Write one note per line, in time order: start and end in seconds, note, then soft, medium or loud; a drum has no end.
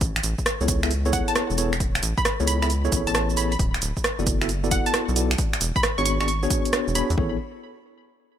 0.01 0.20 A1 loud
0.01 kick loud
0.01 closed hi-hat medium
0.01 cabasa soft
0.16 finger snap medium
0.16 closed hi-hat medium
0.16 cabasa soft
0.23 0.35 A1 loud
0.23 closed hi-hat loud
0.23 cabasa medium
0.38 kick medium
0.38 cabasa soft
0.46 cross-stick loud
0.46 closed hi-hat medium
0.46 cabasa soft
0.61 1.22 C#2 medium
0.61 0.80 B3 medium
0.61 0.80 E4 medium
0.61 0.80 G#4 medium
0.61 0.80 A4 medium
0.61 0.80 C#5 medium
0.61 cabasa soft
0.68 kick loud
0.68 closed hi-hat loud
0.68 cabasa medium
0.83 0.91 B3 medium
0.83 0.91 E4 medium
0.83 0.91 G#4 medium
0.83 0.91 A4 medium
0.83 0.91 E5 medium
0.83 finger snap medium
0.83 closed hi-hat soft
0.83 cabasa soft
0.91 closed hi-hat medium
0.91 cabasa soft
1.06 1.56 B3 medium
1.06 1.56 E4 medium
1.06 1.56 G#4 medium
1.06 1.56 A4 medium
1.06 1.56 C#5 loud
1.06 cabasa soft
1.13 1.25 F#5 medium
1.13 kick loud
1.13 closed hi-hat loud
1.13 cabasa medium
1.28 1.44 A5 medium
1.28 closed hi-hat medium
1.28 cabasa soft
1.36 cross-stick loud
1.36 closed hi-hat medium
1.36 cabasa soft
1.50 2.00 E1 medium
1.50 cabasa soft
1.58 1.72 B3 medium
1.58 1.72 E4 medium
1.58 1.72 G#4 medium
1.58 1.72 A4 medium
1.58 1.72 C#5 medium
1.58 closed hi-hat loud
1.58 cabasa medium
1.73 finger snap medium
1.73 closed hi-hat soft
1.73 cabasa soft
1.80 kick loud
1.80 closed hi-hat medium
1.80 cabasa soft
1.95 finger snap medium
1.95 closed hi-hat medium
1.95 cabasa soft
2.03 2.14 A1 loud
2.03 closed hi-hat loud
2.03 cabasa medium
2.18 2.33 B5 medium
2.18 kick loud
2.18 cabasa soft
2.25 cross-stick loud
2.25 closed hi-hat medium
2.25 cabasa soft
2.40 2.89 C#2 medium
2.40 2.59 B3 medium
2.40 2.59 E4 medium
2.40 2.59 G#4 medium
2.40 2.59 A4 medium
2.40 2.59 C#5 medium
2.40 cabasa soft
2.47 2.57 B5 medium
2.47 closed hi-hat loud
2.47 cabasa medium
2.62 2.70 B3 medium
2.62 2.70 E4 medium
2.62 2.70 G#4 medium
2.62 2.70 A4 medium
2.62 2.70 E5 medium
2.62 2.67 B5 medium
2.62 finger snap medium
2.62 closed hi-hat soft
2.62 cabasa soft
2.70 closed hi-hat medium
2.70 cabasa soft
2.85 3.35 B3 medium
2.85 3.35 E4 medium
2.85 3.35 G#4 medium
2.85 3.35 A4 medium
2.85 3.35 C#5 loud
2.85 cabasa soft
2.92 3.03 A1 medium
2.92 kick loud
2.92 closed hi-hat loud
2.92 cabasa medium
3.07 3.56 A1 medium
3.07 3.12 A5 medium
3.07 closed hi-hat medium
3.07 cabasa soft
3.15 3.24 A5 medium
3.15 cross-stick loud
3.15 closed hi-hat medium
3.15 cabasa soft
3.30 cabasa soft
3.37 3.52 B3 medium
3.37 3.52 E4 medium
3.37 3.52 G#4 medium
3.37 3.52 A4 medium
3.37 3.52 C#5 medium
3.37 3.47 B5 medium
3.37 closed hi-hat loud
3.37 cabasa medium
3.52 3.57 B5 medium
3.52 closed hi-hat soft
3.52 cabasa soft
3.59 3.78 D1 loud
3.59 kick loud
3.59 closed hi-hat medium
3.59 cabasa soft
3.74 finger snap medium
3.74 closed hi-hat medium
3.74 cabasa soft
3.82 3.93 D1 loud
3.82 closed hi-hat loud
3.82 cabasa medium
3.97 kick medium
3.97 cabasa soft
4.04 cross-stick loud
4.04 closed hi-hat medium
4.04 cabasa soft
4.19 4.80 F#1 medium
4.19 4.38 B3 medium
4.19 4.38 E4 medium
4.19 4.38 F#4 medium
4.19 4.38 A4 medium
4.19 4.38 D5 medium
4.19 cabasa soft
4.27 kick loud
4.27 closed hi-hat loud
4.27 cabasa medium
4.42 4.49 B3 medium
4.42 4.49 E4 medium
4.42 4.49 F#4 medium
4.42 4.49 A4 medium
4.42 4.49 E5 medium
4.42 finger snap medium
4.42 closed hi-hat soft
4.42 cabasa soft
4.49 closed hi-hat medium
4.49 cabasa soft
4.64 5.14 B3 medium
4.64 5.14 E4 medium
4.64 5.14 F#4 medium
4.64 5.14 A4 medium
4.64 5.14 D5 loud
4.64 cabasa soft
4.71 4.83 F#5 medium
4.71 kick loud
4.71 closed hi-hat loud
4.71 cabasa medium
4.86 5.02 A5 medium
4.86 closed hi-hat medium
4.86 cabasa soft
4.94 cross-stick loud
4.94 closed hi-hat medium
4.94 cabasa soft
5.09 5.35 B1 medium
5.09 cabasa soft
5.16 5.31 B3 medium
5.16 5.31 E4 medium
5.16 5.31 F#4 medium
5.16 5.31 A4 medium
5.16 5.31 D5 medium
5.16 closed hi-hat loud
5.16 cabasa medium
5.31 finger snap medium
5.31 closed hi-hat soft
5.31 cabasa soft
5.38 kick loud
5.38 closed hi-hat medium
5.38 cabasa soft
5.53 finger snap medium
5.53 closed hi-hat medium
5.53 cabasa soft
5.61 5.72 E1 loud
5.61 closed hi-hat loud
5.61 cabasa medium
5.76 5.91 B5 medium
5.76 kick loud
5.76 cabasa soft
5.83 cross-stick loud
5.83 closed hi-hat medium
5.83 cabasa soft
5.98 6.47 G#1 medium
5.98 6.17 B3 medium
5.98 6.17 D4 medium
5.98 6.17 F#4 medium
5.98 6.17 G#4 medium
5.98 6.17 C#5 medium
5.98 6.04 C#6 medium
5.98 cabasa soft
6.05 6.17 C#6 medium
6.05 closed hi-hat loud
6.05 cabasa medium
6.20 6.28 B3 medium
6.20 6.28 D4 medium
6.20 6.28 F#4 medium
6.20 6.28 G#4 medium
6.20 6.28 D5 medium
6.20 6.25 C#6 medium
6.20 finger snap medium
6.20 closed hi-hat soft
6.20 cabasa soft
6.28 6.38 C#6 medium
6.28 closed hi-hat medium
6.28 cabasa soft
6.43 6.93 B3 medium
6.43 6.93 D4 medium
6.43 6.93 F#4 medium
6.43 6.93 G#4 medium
6.43 6.93 C#5 loud
6.43 cabasa soft
6.50 kick loud
6.50 closed hi-hat loud
6.50 cabasa medium
6.65 closed hi-hat medium
6.65 cabasa soft
6.73 cross-stick loud
6.73 closed hi-hat medium
6.73 cabasa soft
6.88 7.03 E1 medium
6.88 cabasa soft
6.95 7.10 B3 medium
6.95 7.10 D4 medium
6.95 7.10 F#4 medium
6.95 7.10 G#4 medium
6.95 7.10 C#5 medium
6.95 7.18 B5 medium
6.95 closed hi-hat loud
6.95 cabasa medium
7.10 7.16 E2 loud
7.10 closed hi-hat soft
7.10 cabasa soft
7.18 7.38 A1 medium
7.18 7.36 B3 medium
7.18 7.36 E4 medium
7.18 7.36 G#4 medium
7.18 7.36 A4 medium
7.18 7.36 C#5 medium
7.18 kick loud